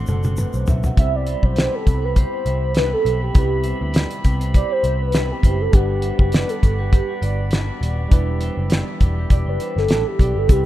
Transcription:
Already playing: A3 D4 F#4 A4 C5 D5 F#5 C6
0.07 F#1 D3 A3 C4 F#4 A4, high tom, shaker
0.23 A3 C4 F#4, high tom, shaker
0.37 D3 A3 C4 F#4 B4, mid tom, shaker
0.53 B1 C5, shaker
0.67 B1 D3 A3 C4 F#4 E5, floor tom, shaker
0.83 A3 C4 F#4 F#5, floor tom, shaker
0.96 C2 C3 G3 B3 C4 E4 G4 E5 B5, kick, closed hi-hat
1.01 C5
1.15 D5
1.26 C3 B3 E4 G4 C5 E5, closed hi-hat
1.43 B1 B3 E4 G4 C5, kick
1.56 C3 B3 E4 G4 B4 D5, snare, closed hi-hat
1.75 A4
1.86 C2 C3 B3 E4 G4, kick, closed hi-hat
2.02 B3 E4 G4 A4 B4 C5
2.16 G4 C5, kick, closed hi-hat
2.31 B3 E4 G4
2.45 C2 C3 B3 E4 G4 C5 E5, closed hi-hat
2.75 C3 B3 E4 G4 B4, snare, closed hi-hat
2.93 A4
3.05 B1 C3 B3 E4 G4 C5 E5, closed hi-hat
3.21 B3 E4 G4
3.34 C2 C3 G3 B3 C4 E4 G4, kick, closed hi-hat
3.39 B4
3.63 C3 B3 E4 G4 C5 E5, closed hi-hat
3.80 D2 B3 E4 G4
3.93 C3 B3 E4 G4 B4 D5, snare, closed hi-hat
4.11 closed hi-hat
4.23 C2 C3 B3 E4 G4, kick, closed hi-hat
4.40 B3 E4 G4 A4 C5, closed hi-hat
4.54 G4 C5 D5, kick, closed hi-hat
4.70 B3 E4 G4 C5
4.83 C2 C3 B3 E4 G4 C5 E5, closed hi-hat
5.02 B4
5.12 C3 B3 E4 G4, snare, closed hi-hat
5.31 G4
5.43 F#1 C3 G3 B3 C4 E4 G4 B4 C5 E5, kick, closed hi-hat
5.60 B3 E4 G4 A4
5.72 G1 G3 B3 D4 F#4 G4 D5 F#5 B5, kick, closed hi-hat
5.77 B4
6.02 G3 B3 D4 F#4 C5 E5, closed hi-hat
6.19 F#1 B3 D4 F#4, kick
6.32 G3 B3 D4 F#4 B4 D5, snare, closed hi-hat
6.49 A4, closed hi-hat
6.62 G1 G3 B3 D4 F#4, kick, closed hi-hat
6.78 B3 D4 F#4 G4 B4
6.92 G4 B4, kick, closed hi-hat
7.08 B3 D4 F#4
7.21 G1 G3 B3 D4 F#4 B4 D5, closed hi-hat
7.51 G3 B3 D4 F#4, snare, closed hi-hat
7.81 D#1 G3 B3 D4 F#4 B4 D5, closed hi-hat
7.97 B3 D4 F#4
8.09 E1 E3 G3 B3 D4 E4 G4, kick, closed hi-hat
8.13 B4 E5 B5
8.40 E3 B3 D4 G4 C5 E5, closed hi-hat
8.56 F#1 B3 D4 G4
8.70 E3 B3 D4 G4 B4 D5, snare, closed hi-hat
9.00 E1 E3 B3 D4 G4, kick, closed hi-hat
9.16 B3 D4 G4 B4
9.20 G4
9.30 E1 B4 D5, kick, closed hi-hat
9.46 F#1 B3 D4 G4 B4
9.59 E3 B3 D4 G4 C5 E5, closed hi-hat
9.76 G1 A4, snare
9.88 A1 E3 B3 D4 G4, snare, closed hi-hat
10.07 G4
10.19 B1 E3 B3 D4 G4 B4 D5, kick, closed hi-hat
10.36 G1 B3 D4 G4 A4
10.47 C2 C3 G3 B3 C4 E4 G4, kick, closed hi-hat, shaker
10.53 B4

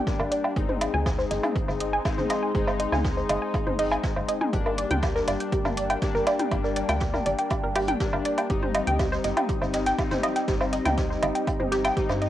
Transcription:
Already playing: G4 D5 G5
0.07 G3 A#3 D4 G4, kick, snare, closed hi-hat
0.19 G1 A#4, low woodblock
0.31 D5, closed hi-hat
0.44 G5, low woodblock
0.56 G1 G#3 C4 D#4 G#4, kick, closed hi-hat
0.69 C5, mid tom
0.81 D#5, closed hi-hat, low woodblock
0.94 D2 G#5
1.06 G#4 D#5, kick, snare, closed hi-hat, low woodblock
1.18 C5, snare
1.22 C6
1.31 G1 D#5, snare, closed hi-hat
1.43 G#5, closed hi-hat, mid tom, low woodblock
1.56 G#4, kick, closed hi-hat
1.68 G1 C5, snare, low woodblock
1.80 D#5, closed hi-hat
1.93 G#5
2.05 G#3 C4 D#4 G#4, kick, snare, closed hi-hat, low woodblock
2.17 G1 C5, snare, mid tom
2.29 D#5, snare, closed hi-hat, low woodblock
2.43 G#5
2.55 G1 G#3 C4 D#4 G#4, kick, closed hi-hat
2.67 C5, snare, low woodblock
2.80 D#5, closed hi-hat
2.92 D2 G#5, snare, mid tom, low woodblock
3.04 G#4, kick, snare, closed hi-hat
3.17 C5, snare
3.29 G1 D#5, closed hi-hat, low woodblock
3.42 G#5
3.54 G#4, kick, closed hi-hat, low woodblock
3.67 G1 C5, mid tom
3.79 G#3 C4 D#4 D#5, closed hi-hat, open hi-hat
3.91 G#5, closed hi-hat, low woodblock
4.03 G#4, kick, snare, closed hi-hat
4.16 G1 C5, low woodblock
4.29 D#5, closed hi-hat
4.41 G#5, mid tom
4.53 G1 G3 A#3 D4 G4, kick, closed hi-hat
4.66 A#4, low woodblock
4.76 D5, closed hi-hat
4.91 D2 G5, closed hi-hat, mid tom
5.02 G4 G5, kick, snare, closed hi-hat, low woodblock
5.15 A#4, snare
5.27 G1 D5, snare, closed hi-hat, low woodblock
5.40 G5, closed hi-hat
5.52 G4, kick, closed hi-hat
5.64 G1 A#4, snare, mid tom, low woodblock
5.77 D5, closed hi-hat
5.90 G5, closed hi-hat, low woodblock
6.01 G3 A#3 D4 G4, kick, snare, closed hi-hat
6.15 G1 A#4, snare
6.27 D5, snare, closed hi-hat, low woodblock
6.39 G5, closed hi-hat, mid tom
6.51 G1 G3 A#3 D4 G4, kick, closed hi-hat, low woodblock
6.64 A#4, snare
6.76 D5, closed hi-hat
6.88 D2 G5, snare, closed hi-hat, low woodblock
7.00 G4, kick, snare, closed hi-hat
7.14 A#4, snare, mid tom, low woodblock
7.26 G1 D5, closed hi-hat
7.39 G5, closed hi-hat
7.50 G4, kick, closed hi-hat, low woodblock
7.63 G1 A#4
7.75 G4, closed hi-hat, open hi-hat, low woodblock
7.88 G5, closed hi-hat, mid tom
8.00 G3 A#3 D4 G4, kick, snare, closed hi-hat
8.13 G1 A#4, low woodblock
8.25 D5, closed hi-hat
8.38 G5, closed hi-hat, low woodblock
8.50 G1 G3 C4 D#4 G4, kick, closed hi-hat
8.62 C5, mid tom
8.75 D#5, closed hi-hat, low woodblock
8.87 D2 G5, closed hi-hat
8.99 G4, kick, snare, closed hi-hat, low woodblock
9.12 C5, snare
9.24 G1 D#5, snare, closed hi-hat
9.37 G5, closed hi-hat, mid tom, low woodblock
9.49 G4, kick, closed hi-hat
9.62 G1 C5, snare, low woodblock
9.73 D#5, snare, closed hi-hat
9.86 G5, snare, closed hi-hat
9.93 D#5
9.99 G3 C4 D#4 G4, kick, snare, closed hi-hat, low woodblock
10.11 G1 C5, snare, closed hi-hat, mid tom
10.23 D#5, snare, closed hi-hat, low woodblock
10.36 G5, snare, closed hi-hat
10.48 G1 G3 C4 D#4 G4, kick, snare, closed hi-hat
10.61 C5, snare, low woodblock
10.73 D#5, snare, closed hi-hat
10.85 D2 G5, snare, closed hi-hat, mid tom, low woodblock
10.97 G4, kick, snare, closed hi-hat
11.10 C5, snare
11.22 G1 D#5, closed hi-hat, low woodblock
11.35 G5, closed hi-hat
11.47 G4, kick, closed hi-hat, low woodblock
11.60 G1 C5, mid tom
11.72 G4, snare, closed hi-hat
11.85 G5, snare, closed hi-hat, low woodblock
11.97 G3 C4 D#4 G4, kick, snare, closed hi-hat
12.09 G2 C5, snare, closed hi-hat, low woodblock
12.22 D#5, snare, closed hi-hat

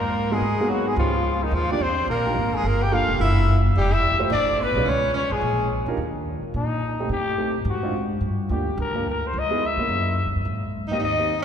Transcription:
Already playing: G#2 A#3 A#4
0.31 G#3 A#3 B3 D#4 F#4 G#4
0.41 G#2
0.60 A#3 B3 D#4 F#4 G#4
0.69 F#3 F#4
0.88 G#3 G#4
0.96 C#2 F3 B3 C#4 D#4 F4 G4
1.43 D#3 D#4
1.51 D#2 F3 F4
1.71 A#3 D4 D#4 F4 G4 D5
1.80 E2 C4 C5
2.08 A#1 A#3 A#4
2.26 A#3 D4 D#4 F4 G4
2.35 G#1
2.54 G#3 G#4
2.63 G1 A#3 A#4
2.83 G4 G5
2.92 A#3 D4 F4 G4 A4 F5
3.08 F1
3.19 F#1 E4 E5
3.75 F1 G3 G4
3.92 E4 E5
4.12 G1
4.19 F#1 A3 E4 F4 G4 C5
4.30 A1 D4 D5
4.60 B3 B4
4.75 B1 C#4 D#4 F4 G#4 C#5
4.85 C#2 C#4
4.89 C#5
5.13 C#4 C#5
5.30 A1 G#3 G#4
5.41 A#1
5.86 D2 D4 D#4 F4 G4 A#4
5.97 D#2
6.42 muted upright bass stroke
6.54 A#2 D#4
7.00 A3 C4 D#4 G4
7.09 A2 G4
7.38 A3 C4 D#4 G4
7.65 G#2
7.69 F#4
7.83 C4 D4 D#4 F4
8.21 G2
8.49 D2 A#3 D4 F4 G4
8.77 D2 A#4
8.95 A#3 D4 F4 A#4
9.09 A#4
9.27 C5
9.33 C#2
9.39 D#5
9.50 B3 D#4 E4 G#4
9.66 E5
9.77 C#3 A#3 C#4 E4 A#4
9.89 F#2
10.26 G#2
10.36 F#2
10.45 G#2
10.88 A#3 C4 D#4 G4 D#5
10.99 D#2 D#4 D#5
11.19 A#3 C4 D#4 G4

